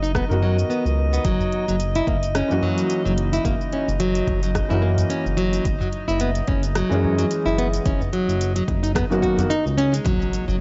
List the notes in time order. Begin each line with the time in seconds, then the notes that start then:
Already playing: F#1 D#4 D#5
0.02 D#4, cabasa
0.15 B3, kick, cross-stick, cabasa
0.28 F#2 D#3 B3 F#4 A#4, cabasa
0.42 F#3
0.59 cabasa
0.70 B3, cabasa
0.85 C#2, cabasa
1.13 B3, cabasa
1.25 F#1 F#3, kick, closed hi-hat, cabasa
1.39 udu, cabasa
1.52 closed hi-hat
1.68 F#1 F#3, cabasa
1.80 closed hi-hat, cabasa
1.95 E4, closed hi-hat, cabasa
2.07 F#1 A#3, kick, closed hi-hat
2.23 closed hi-hat, cabasa
2.35 C#4, cross-stick, closed hi-hat, cabasa
2.48 F#2 E3 A#3 C#4 F#4, cabasa
2.62 F#3, udu
2.78 closed hi-hat, cabasa
2.90 closed hi-hat, cabasa
3.05 F#1 F#3, cabasa
3.18 closed hi-hat
3.33 E4, closed hi-hat, cabasa
3.45 F#1 A#3, kick, closed hi-hat, cabasa
3.61 cabasa
3.73 C#4, closed hi-hat
3.88 F#1, cabasa
4.00 F#3, closed hi-hat, cabasa
4.15 closed hi-hat, cabasa
4.27 F#1, kick, closed hi-hat, udu
4.43 F#3, closed hi-hat, cabasa
4.55 kick, cross-stick, closed hi-hat, cabasa
4.69 F#2 E3 A#3 C#4 E4, cabasa
4.73 F#4
4.82 A#3
4.98 closed hi-hat, udu, cabasa
5.10 C#4, closed hi-hat, cabasa
5.26 F#1, cabasa
5.37 F#3, closed hi-hat
5.53 closed hi-hat, cabasa
5.65 F#1, kick, closed hi-hat, cabasa
5.81 F#3, udu, cabasa
5.93 closed hi-hat
6.08 F#1 E4, cabasa
6.20 B3, closed hi-hat, cabasa
6.35 closed hi-hat, cabasa
6.47 F#1 C#4, kick, closed hi-hat
6.63 closed hi-hat, cabasa
6.75 F#3, cross-stick, closed hi-hat, cabasa
6.89 F#2 E3 G#3 C#4, cabasa
6.93 G#4
7.04 udu
7.18 F#3, closed hi-hat, cabasa
7.31 closed hi-hat, cabasa
7.46 F#1 E4, cabasa
7.58 B3, closed hi-hat
7.73 closed hi-hat, cabasa
7.85 F#1 C#4, kick, closed hi-hat, cabasa
8.01 udu, cabasa
8.13 F#3, closed hi-hat
8.28 F#1, cabasa
8.41 closed hi-hat, cabasa
8.56 F#3, closed hi-hat, cabasa
8.68 F#1, kick, closed hi-hat, udu
8.83 D#4, closed hi-hat, cabasa
8.95 B3, kick, cross-stick, closed hi-hat, cabasa
9.10 F#2 D#3 A#3 B3 F#4, cabasa
9.22 F#4, kick, closed hi-hat
9.38 D#3 A#3 B3 F#4, closed hi-hat, udu, cabasa
9.50 D#4, closed hi-hat, cabasa
9.66 C#2, cabasa
9.78 C#4, closed hi-hat
9.93 G#3, closed hi-hat, cabasa
10.05 F#1 E3 F#3 A#3 F#4 C#5, kick, closed hi-hat, impact, cabasa
10.22 cabasa
10.33 closed hi-hat, cabasa
10.48 F#1 F#3, cabasa